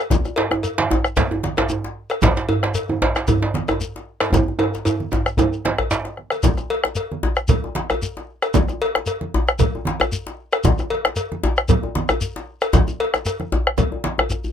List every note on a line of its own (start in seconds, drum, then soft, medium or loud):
0.10 bombo rim soft
0.10 bombo low loud
0.10 djembe slap medium
0.10 high conga medium
0.10 djembe bass medium
0.10 low conga medium
0.10 shekere medium
0.25 bombo rim soft
0.25 djembe tone medium
0.25 shekere soft
0.36 cowbell medium
0.36 djembe slap loud
0.36 high conga soft
0.51 bombo rim medium
0.51 djembe slap medium
0.51 djembe tone medium
0.63 cowbell soft
0.63 shekere medium
0.78 djembe slap loud
0.78 djembe slap soft
0.78 high conga medium
0.91 djembe slap medium
0.91 djembe tone medium
0.91 djembe bass medium
1.04 bombo rim medium
1.04 shekere soft
1.17 bombo low loud
1.17 cowbell soft
1.17 djembe slap loud
1.17 low conga medium
1.17 shekere medium
1.31 djembe tone medium
1.43 djembe slap medium
1.43 high conga medium
1.57 bombo rim medium
1.57 cowbell medium
1.57 djembe slap loud
1.57 djembe bass medium
1.57 shekere soft
1.69 djembe slap soft
1.69 djembe tone medium
1.69 shekere medium
1.84 djembe slap medium
2.10 bombo rim medium
2.10 cowbell medium
2.10 shekere soft
2.22 bombo rim soft
2.22 bombo low medium
2.22 djembe slap loud
2.22 djembe slap medium
2.22 high conga medium
2.22 low conga medium
2.22 djembe bass medium
2.22 shekere medium
2.36 bombo rim soft
2.36 djembe slap medium
2.36 shekere soft
2.49 cowbell medium
2.49 high conga soft
2.49 djembe bass medium
2.63 bombo rim medium
2.63 djembe slap medium
2.74 cowbell soft
2.74 shekere medium
2.89 djembe slap soft
2.89 high conga medium
2.89 djembe tone medium
3.02 djembe slap medium
3.02 djembe slap loud
3.02 djembe bass medium
3.15 bombo rim medium
3.15 djembe slap medium
3.15 shekere soft
3.28 bombo low medium
3.28 cowbell medium
3.28 low conga medium
3.28 djembe bass medium
3.28 shekere medium
3.42 djembe slap medium
3.42 djembe tone medium
3.54 djembe slap medium
3.54 high conga medium
3.68 bombo rim medium
3.68 cowbell medium
3.68 djembe tone medium
3.68 djembe bass medium
3.68 shekere soft
3.81 djembe slap soft
3.81 shekere medium
3.96 djembe slap medium
4.20 bombo rim medium
4.20 cowbell medium
4.20 djembe slap medium
4.20 shekere soft
4.23 djembe slap soft
4.32 bombo low loud
4.32 djembe slap medium
4.32 djembe tone loud
4.32 high conga medium
4.32 low conga medium
4.32 djembe bass medium
4.32 shekere medium
4.48 djembe slap soft
4.48 djembe tone medium
4.59 bombo rim soft
4.59 cowbell medium
4.59 djembe slap soft
4.59 djembe tone loud
4.59 high conga soft
4.74 djembe slap medium
4.74 shekere soft
4.85 bombo rim soft
4.85 cowbell soft
4.85 djembe tone loud
4.85 high conga soft
4.85 shekere medium
5.00 high conga medium
5.12 djembe slap medium
5.12 djembe tone medium
5.12 djembe bass medium
5.12 shekere soft
5.26 bombo rim medium
5.26 djembe slap soft
5.26 high conga soft
5.26 shekere soft
5.37 bombo low loud
5.37 cowbell soft
5.37 djembe tone loud
5.37 high conga soft
5.37 low conga medium
5.37 shekere medium
5.53 shekere soft
5.65 bombo rim soft
5.65 djembe slap medium
5.65 djembe slap loud
5.65 high conga medium
5.78 bombo rim medium
5.78 cowbell soft
5.78 djembe slap soft
5.78 djembe bass medium
5.91 djembe slap medium
5.91 high conga soft
5.91 shekere medium
6.05 bombo rim soft
6.05 djembe slap medium
6.17 bombo rim soft
6.17 high conga soft
6.30 bombo rim medium
6.30 cowbell soft
6.30 high conga soft
6.30 shekere soft
6.43 bombo rim soft
6.43 bombo low loud
6.43 djembe slap medium
6.43 high conga medium
6.43 djembe bass medium
6.43 low conga medium
6.43 shekere medium
6.57 bombo rim soft
6.57 djembe tone medium
6.57 shekere soft
6.70 cowbell medium
6.70 high conga soft
6.84 bombo rim medium
6.84 djembe slap medium
6.95 cowbell medium
6.95 shekere medium
7.11 djembe slap soft
7.11 high conga medium
7.23 djembe slap medium
7.23 djembe bass medium
7.36 bombo rim medium
7.36 shekere soft
7.48 bombo low loud
7.48 cowbell medium
7.48 low conga medium
7.48 shekere medium
7.64 djembe tone medium
7.75 djembe slap medium
7.75 high conga medium
7.90 bombo rim medium
7.90 cowbell medium
7.90 djembe bass medium
7.90 shekere soft
8.02 djembe slap soft
8.02 shekere medium
8.17 djembe slap medium
8.42 bombo rim medium
8.42 cowbell medium
8.42 djembe slap soft
8.42 shekere soft
8.54 bombo rim soft
8.54 bombo low loud
8.54 djembe slap medium
8.54 high conga medium
8.54 low conga medium
8.54 djembe bass medium
8.54 shekere medium
8.68 bombo rim soft
8.68 djembe tone medium
8.68 shekere soft
8.80 cowbell medium
8.80 high conga soft
8.95 bombo rim medium
8.95 djembe slap medium
9.06 cowbell medium
9.06 shekere medium
9.21 djembe slap soft
9.21 high conga medium
9.34 djembe slap medium
9.34 djembe bass medium
9.48 bombo rim medium
9.48 shekere soft
9.59 bombo low loud
9.59 cowbell medium
9.59 low conga medium
9.59 shekere medium
9.75 djembe tone medium
9.85 djembe slap medium
9.85 high conga medium
10.00 bombo rim medium
10.00 cowbell medium
10.00 djembe bass medium
10.00 shekere soft
10.12 djembe slap soft
10.12 shekere medium
10.27 djembe slap medium
10.52 bombo rim medium
10.52 cowbell medium
10.52 djembe slap soft
10.52 shekere soft
10.64 bombo rim soft
10.64 bombo low loud
10.64 djembe slap medium
10.64 high conga medium
10.64 low conga medium
10.64 djembe bass medium
10.64 shekere medium
10.78 bombo rim soft
10.78 djembe tone medium
10.78 shekere soft
10.90 cowbell medium
10.90 high conga soft
11.05 bombo rim medium
11.05 djembe slap medium
11.16 cowbell medium
11.16 shekere medium
11.31 djembe slap soft
11.31 high conga medium
11.43 djembe slap medium
11.43 djembe bass medium
11.57 bombo rim medium
11.57 shekere soft
11.68 bombo low loud
11.68 cowbell medium
11.68 low conga medium
11.68 shekere medium
11.83 djembe tone medium
11.95 djembe slap medium
11.95 high conga medium
12.09 bombo rim medium
12.09 cowbell medium
12.09 djembe bass medium
12.09 shekere soft
12.21 djembe slap soft
12.21 shekere medium
12.36 djembe slap medium
12.61 bombo rim medium
12.61 cowbell medium
12.61 djembe slap soft
12.61 shekere soft
12.73 bombo low loud
12.73 djembe slap medium
12.73 high conga medium
12.73 djembe bass medium
12.73 low conga medium
12.73 shekere medium
12.88 djembe slap soft
12.88 djembe tone medium
12.88 shekere soft
13.00 bombo rim soft
13.00 cowbell medium
13.00 djembe slap soft
13.00 high conga soft
13.14 bombo rim medium
13.14 djembe slap medium
13.14 shekere soft
13.25 bombo rim soft
13.25 cowbell medium
13.25 djembe slap soft
13.25 shekere medium
13.40 bombo rim soft
13.40 high conga medium
13.52 bombo rim soft
13.52 djembe slap medium
13.52 high conga soft
13.52 djembe bass medium
13.67 bombo rim medium
13.78 bombo low loud
13.78 cowbell soft
13.78 djembe slap soft
13.78 high conga soft
13.78 low conga medium
13.78 shekere medium
13.92 djembe tone medium
14.04 djembe slap medium
14.04 high conga medium
14.18 bombo rim medium
14.18 cowbell soft
14.18 high conga soft
14.18 djembe bass medium
14.30 bombo rim soft
14.30 high conga soft
14.30 djembe bass soft
14.30 shekere medium
14.44 djembe bass medium
14.44 shekere soft